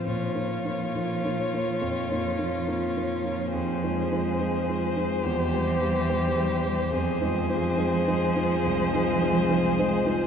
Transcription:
<<
  \new Staff \with { instrumentName = "Violin" } { \time 4/4 \key bes \minor \tempo 4 = 70 des''1 | c''1 | c''1 | }
  \new Staff \with { instrumentName = "Violin" } { \time 4/4 \key bes \minor f'1 | aes'2 g'2 | aes'1 | }
  \new Staff \with { instrumentName = "Grand piano" } { \time 4/4 \key bes \minor \tuplet 3/2 { bes,8 <bes f' des''>8 <bes f' des''>8 <bes f' des''>8 <bes f' des''>8 <bes f' des''>8 f,8 <bes f' des''>8 <bes f' des''>8 <bes f' des''>8 <bes f' des''>8 <bes f' des''>8 } | \tuplet 3/2 { f,8 <aes f' c''>8 <aes f' c''>8 <aes f' c''>8 <aes f' c''>8 <aes f' c''>8 e,8 <g g' c''>8 <g g' c''>8 <g g' c''>8 <g g' c''>8 <g g' c''>8 } | \tuplet 3/2 { f,8 <aes f' c''>8 <aes f' c''>8 <aes f' c''>8 <aes f' c''>8 <aes f' c''>8 c,8 <aes f' c''>8 <aes f' c''>8 <aes f' c''>8 <aes f' c''>8 <aes f' c''>8 } | }
  \new Staff \with { instrumentName = "Cello" } { \clef bass \time 4/4 \key bes \minor f1~ | f2 e2 | f1 | }
>>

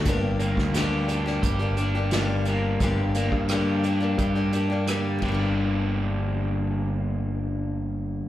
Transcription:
<<
  \new Staff \with { instrumentName = "Overdriven electric guitar" } { \time 4/4 \key g \minor \tempo 4 = 87 g,8 bes8 g'8 d'8 g'8 d'8 g8 bes8 | g,8 bes8 g'8 d'8 g'8 d'8 g8 <g, d g bes d' g'>8~ | <g, d g bes d' g'>1 | }
  \new Staff \with { instrumentName = "Steel-string acoustic guitar" } { \time 4/4 \key g \minor <g, d g bes d' g'>8 <g bes d' g'>8 <g, d g bes d' g'>8 <g bes d' g'>16 <g bes d' g'>8 <g bes d' g'>16 <g bes d' g'>16 <g bes d' g'>16 <g, d g bes d' g'>8 <g bes d' g'>8 | <g, d g bes d' g'>8 <g bes d' g'>8 <g, d g bes d' g'>8 <g bes d' g'>16 <g bes d' g'>8 <g bes d' g'>16 <g bes d' g'>16 <g bes d' g'>16 <g, d g bes d' g'>8 <g, d g bes d' g'>8~ | <g, d g bes d' g'>1 | }
  \new Staff \with { instrumentName = "Picked electric bass" } { \clef bass \time 4/4 \key g \minor g,,8. d,4~ d,16 g,,2 | g,,8. g,4~ g,16 g,4. g,,8~ | g,,1 | }
  \new DrumStaff \with { instrumentName = "Drums" } \drummode { \time 4/4 <hh bd>8 hh16 <bd sn>16 <hh sn>8 hh16 sn16 <hh bd>8 hh8 <hh sn>8 hh8 | <hh bd>8 hh16 bd16 <hh ss>8 hh8 <hh bd>8 hh8 <hh ss>8 <bd cymr>8 | r4 r4 r4 r4 | }
>>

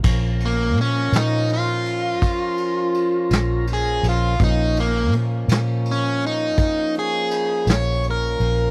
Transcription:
<<
  \new Staff \with { instrumentName = "Overdriven electric guitar" } { \time 12/8 \key bes \minor \tempo 4. = 55 r8 bes8 des'8 ees'8 f'2. aes'8 f'8 | ees'8 bes8 r4 des'8 ees'4 aes'4 des''8 bes'4 | }
  \new Staff \with { instrumentName = "Tonewheel organ" } { \time 12/8 \key bes \minor <f des' bes'>1. | <f bes des'>1. | }
  \new Staff \with { instrumentName = "Fingered electric bass" } { \clef bass \time 12/8 \key bes \minor bes,,4 bes,8 bes,4. bes,,4. bes,,4 bes,,8 | bes,,4 bes,8 bes,4. bes,,4. bes,,4 bes,,8 | }
  \new DrumStaff \with { instrumentName = "Drums" } \drummode { \time 12/8 <cymc bd>8 cymr8 cymr8 <cymr sn>8 cymr8 cymr8 <bd cymr>8 cymr8 cymr8 <cymr sn>8 cymr8 cymr8 | <bd cymr>8 cymr8 cymr8 <cymr sn>8 cymr8 cymr8 <bd cymr>8 cymr8 cymr8 <cymr sn>8 cymr8 cymr8 | }
>>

